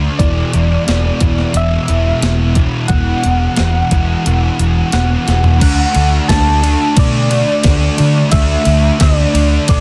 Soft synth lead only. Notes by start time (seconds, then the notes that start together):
0.19 D5
1.57 E5
2.88 F#5
4.93 F#5
5.62 F#5
6.28 A5
6.99 D5
8.32 E5
9.02 D5
9.69 D5